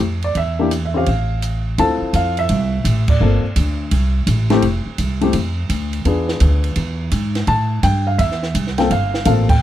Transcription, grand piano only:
0.24 0.35 D5 medium
0.37 0.70 E5 medium
0.59 0.70 A#3 medium
0.59 0.70 D4 medium
0.59 0.71 E4 medium
0.59 0.71 G4 medium
0.85 0.95 E5 medium
0.94 1.05 C4 medium
0.94 1.06 C#4 medium
0.94 1.06 F4 medium
0.94 1.06 G4 medium
0.94 1.63 F5 medium
1.78 2.78 C4 medium
1.78 2.78 E4 medium
1.78 2.78 F4 medium
1.78 2.79 A4 medium
1.78 2.12 A5 medium
2.16 2.37 F5 medium
2.39 3.05 E5 medium
3.10 3.76 D5 medium
3.21 3.42 A#3 medium
3.21 3.42 C4 medium
3.21 3.43 F4 soft
3.21 3.43 A4 medium
4.50 4.62 A3 medium
4.50 4.62 C4 medium
4.50 4.62 E4 medium
4.50 4.63 G4 medium
5.21 5.33 A3 medium
5.21 5.33 C4 medium
5.21 5.33 E4 medium
5.21 5.34 G4 medium
6.05 7.05 B3 medium
6.05 7.05 D4 medium
6.05 7.06 F4 medium
6.05 7.06 G#4 medium
7.48 7.81 A5 medium
7.83 8.08 G5 medium
8.07 8.20 F5 medium
8.18 8.52 E5 medium
8.78 8.89 A#3 medium
8.78 8.90 C4 medium
8.78 8.90 F4 medium
8.78 8.90 A4 medium
8.78 8.91 G5 medium
8.91 9.25 F5 medium
9.25 9.47 A#3 medium
9.25 9.47 C4 medium
9.25 9.48 F4 medium
9.25 9.48 A4 medium
9.25 9.31 F5 medium
9.50 9.62 G5 medium

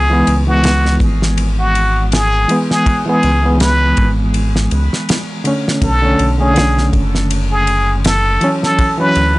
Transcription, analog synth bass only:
0.00 0.23 C#2 medium
0.28 0.98 C#2 medium
1.01 2.46 G#1 medium
3.24 3.94 C#2 medium
3.98 4.69 G#1 medium
4.72 4.90 C#2 medium
5.82 6.15 B1 medium
6.20 6.91 B1 medium
6.93 8.38 F#1 medium
9.16 9.39 D2 medium

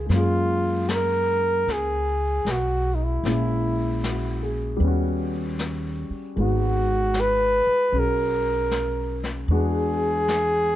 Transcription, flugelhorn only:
0.15 0.91 F4 medium
0.89 0.94 A4 medium
0.89 1.74 A#4 loud
1.72 2.53 G#4 medium
2.51 2.96 F#4 medium
2.95 3.05 D#4 soft
3.04 4.58 E4 medium
6.41 7.22 F#4 medium
7.20 8.01 B4 loud
7.99 9.26 A#4 medium
9.53 10.76 G#4 loud

